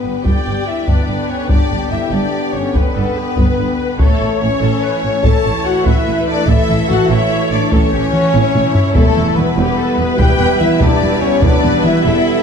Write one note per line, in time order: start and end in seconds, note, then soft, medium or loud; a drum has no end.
0.00 0.12 G1 soft
0.00 3.98 D3 medium
0.00 0.25 B3 medium
0.00 3.95 B3 medium
0.00 3.97 B3 medium
0.00 3.96 D4 medium
0.00 3.96 G4 medium
0.00 0.24 B4 soft
0.00 0.24 B4 medium
0.00 3.96 G5 medium
0.05 0.13 G2 soft
0.24 0.33 G1 medium
0.24 0.33 G2 medium
0.24 0.67 G4 medium
0.24 0.84 D5 medium
0.24 0.66 G5 medium
0.24 0.67 G5 medium
0.24 taiko medium
0.45 0.53 G1 soft
0.45 0.54 G2 soft
0.65 0.87 E4 medium
0.65 0.88 E5 soft
0.65 0.89 E5 medium
0.87 0.95 G1 medium
0.87 0.95 G2 medium
0.87 1.30 D4 medium
0.87 1.49 B4 medium
0.87 1.29 D5 medium
0.87 taiko medium
1.08 1.16 G1 soft
1.08 1.16 G2 soft
1.29 1.50 C#4 medium
1.29 1.50 C#5 medium
1.29 1.51 C#5 medium
1.48 1.57 G1 medium
1.48 1.57 G2 medium
1.48 1.90 D4 medium
1.48 2.75 G4 medium
1.48 1.90 D5 medium
1.48 1.92 D5 medium
1.48 taiko medium
1.70 1.78 G1 soft
1.70 1.79 G2 soft
1.90 1.98 G1 soft
1.90 2.00 G2 soft
1.90 2.12 E4 medium
1.90 2.12 E5 medium
1.90 2.13 E5 medium
2.10 2.18 G1 medium
2.10 2.21 G2 medium
2.10 2.54 D4 medium
2.10 2.54 D5 medium
2.53 2.61 G1 soft
2.53 2.63 G2 soft
2.53 2.74 C#4 medium
2.53 2.75 C#5 medium
2.74 2.83 G1 medium
2.74 2.83 G2 medium
2.74 4.00 B3 medium
2.74 3.99 B4 medium
2.74 2.96 B4 medium
2.74 4.00 B4 medium
2.74 taiko medium
2.95 3.03 G1 medium
2.95 3.05 G2 soft
2.95 3.17 A4 medium
3.17 3.38 G4 medium
3.37 3.45 G1 medium
3.37 3.47 G2 medium
3.37 3.98 B4 medium
3.37 taiko medium
3.58 3.66 G1 medium
3.58 3.67 G2 soft
3.98 4.06 A1 medium
3.98 4.08 A2 medium
3.98 8.78 E3 medium
3.98 8.95 A3 medium
3.98 8.78 A3 medium
3.98 4.41 A3 medium
3.98 8.91 E4 medium
3.98 8.95 A4 medium
3.98 4.41 A4 medium
3.98 4.62 C#5 medium
3.98 8.92 E5 medium
3.98 taiko medium
4.20 4.28 A1 medium
4.20 4.30 A2 soft
4.40 4.50 A1 medium
4.40 4.50 A2 medium
4.40 5.25 C#4 medium
4.40 5.22 C#5 medium
4.40 5.23 C#5 medium
4.61 4.69 A1 medium
4.61 4.71 A2 medium
4.61 4.83 A4 medium
4.82 5.03 B4 medium
5.03 5.11 A1 medium
5.03 5.12 A2 medium
5.03 5.23 C#5 medium
5.24 5.32 A1 medium
5.24 5.32 A2 medium
5.24 5.51 A4 loud
5.24 5.85 C#5 medium
5.24 5.65 A5 medium
5.24 5.66 A5 medium
5.24 taiko medium
5.44 5.52 A1 medium
5.44 5.53 A2 medium
5.64 5.85 F#4 loud
5.64 5.86 F#5 medium
5.64 5.87 F#5 medium
5.85 5.94 A1 medium
5.85 5.95 A2 medium
5.85 6.27 E4 medium
5.85 6.48 B4 medium
5.85 6.27 E5 medium
5.85 6.28 E5 medium
5.85 taiko medium
6.07 6.15 A1 medium
6.07 6.15 A2 medium
6.27 6.48 D4 medium
6.27 6.48 D5 medium
6.27 6.49 D5 medium
6.47 6.55 A1 medium
6.47 6.57 A2 medium
6.47 6.89 E4 loud
6.47 7.09 A4 medium
6.47 6.89 E5 medium
6.47 6.91 E5 loud
6.47 taiko medium
6.68 6.76 A1 medium
6.68 6.78 A2 medium
6.68 taiko mid soft
6.88 6.97 A1 medium
6.88 6.98 A2 medium
6.88 7.09 F#4 loud
6.88 7.11 F#5 medium
6.88 taiko mid medium
7.09 7.18 A1 medium
7.09 7.19 A2 medium
7.09 7.51 E4 loud
7.09 7.72 C#5 medium
7.09 7.51 E5 medium
7.50 7.59 A1 medium
7.50 7.60 A2 medium
7.50 7.71 D4 medium
7.50 7.72 D5 medium
7.71 7.80 A1 medium
7.71 7.80 A2 medium
7.71 8.95 C#4 loud
7.71 7.93 A4 medium
7.71 8.93 C#5 medium
7.71 8.96 C#5 medium
7.71 taiko medium
7.92 8.00 A1 medium
7.92 8.01 A2 medium
7.92 8.13 G4 medium
8.13 8.34 F#4 medium
8.13 taiko mid soft
8.33 8.41 A1 medium
8.33 8.43 A2 medium
8.33 9.57 E4 medium
8.33 taiko high medium
8.55 8.63 A1 medium
8.55 8.63 A2 medium
8.55 taiko low-mid medium
8.75 taiko low loud
8.92 9.03 E1 loud
8.92 9.03 E2 medium
8.92 12.43 G3 medium
8.92 9.36 A3 loud
8.92 12.43 E4 medium
8.92 9.36 A4 loud
8.92 12.43 B4 loud
8.92 12.43 E5 medium
8.92 taiko medium
8.97 12.43 B3 medium
9.16 9.25 E1 medium
9.16 9.25 E2 medium
9.16 taiko mid soft
9.35 9.44 E1 medium
9.35 9.45 E2 medium
9.35 10.19 B3 medium
9.35 10.18 B4 medium
9.35 10.19 B4 medium
9.35 taiko mid medium
9.57 9.65 E1 loud
9.57 9.66 E2 medium
9.57 9.78 G4 loud
9.79 9.99 A4 medium
9.97 10.05 E1 medium
9.97 10.07 E2 medium
9.97 10.81 B4 loud
10.18 10.27 E1 medium
10.18 10.27 E2 medium
10.18 10.60 G4 loud
10.18 10.60 G5 loud
10.18 10.59 G5 medium
10.18 taiko medium
10.39 10.47 E1 medium
10.39 10.48 E2 medium
10.58 10.80 E4 loud
10.58 10.79 E5 medium
10.58 10.80 E5 medium
10.58 taiko mid medium
10.80 10.88 E1 medium
10.80 10.89 E2 medium
10.80 11.22 D4 loud
10.80 11.43 G4 medium
10.80 11.21 D5 medium
10.80 11.22 D5 medium
10.80 taiko medium
11.01 11.09 E1 medium
11.01 11.09 E2 medium
11.19 11.41 C#4 loud
11.19 11.42 C#5 medium
11.19 11.43 C#5 medium
11.41 11.49 E1 loud
11.41 11.51 E2 medium
11.41 11.84 D4 loud
11.41 12.04 B4 medium
11.41 11.82 D5 medium
11.41 11.83 D5 medium
11.41 taiko medium
11.63 11.71 E1 medium
11.63 11.72 E2 medium
11.63 taiko mid medium
11.83 11.91 E1 medium
11.83 11.93 E2 medium
11.83 12.43 E4 loud
11.83 12.43 E5 medium
11.83 taiko mid medium
12.04 12.12 E1 medium
12.04 12.14 E2 medium
12.04 12.43 A4 medium